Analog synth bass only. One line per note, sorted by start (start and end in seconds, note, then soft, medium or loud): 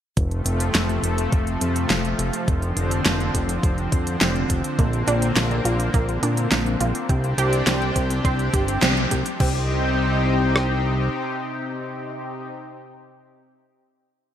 0.17 0.42 F1 loud
0.46 0.70 F1 medium
0.75 0.99 F1 medium
1.03 1.28 F1 medium
1.32 1.57 F1 loud
1.61 1.86 F2 loud
1.90 2.15 F1 medium
2.19 2.31 F1 medium
2.48 2.73 F1 loud
2.77 3.01 F1 medium
3.05 3.30 F1 medium
3.34 3.59 F1 medium
3.63 3.88 F1 medium
3.92 4.17 F2 medium
4.21 4.46 F1 medium
4.50 4.62 F1 medium
4.79 5.03 A#1 loud
5.07 5.32 A#1 medium
5.36 5.61 A#1 medium
5.65 5.90 A#1 medium
5.94 6.19 A#1 medium
6.23 6.47 A#2 loud
6.52 6.76 A#1 medium
6.81 6.93 A#1 medium
7.09 7.34 C2 loud
7.38 7.63 C2 medium
7.67 7.92 C2 medium
7.96 8.21 C2 medium
8.25 8.49 C2 medium
8.54 8.78 G1 loud
8.82 9.07 C2 medium
9.11 9.24 C2 medium
9.40 11.09 C2 medium